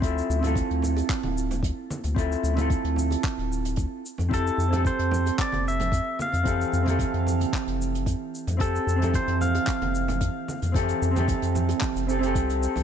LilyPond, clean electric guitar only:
\new Staff \with { instrumentName = "Clean electric guitar" } { \time 4/4 \key f \major \tempo 4 = 112 <c' e' f' a'>8. <c' e' f' a'>2.~ <c' e' f' a'>16 | <c' e' f' a'>8. <c' e' f' a'>2~ <c' e' f' a'>8. r8 | <c' e' g' a'>8. <c' e' g' a'>2.~ <c' e' g' a'>16 | <e c' g' a'>8. <e c' g' a'>2.~ <e c' g' a'>16 |
<c' e' g' a'>8. <e c' g' a'>2.~ <e c' g' a'>16 | <e c' g' a'>8. <e c' g' a'>4.~ <e c' g' a'>16 <c' e' g' a'>16 <c' e' g' a'>4~ <c' e' g' a'>16 | }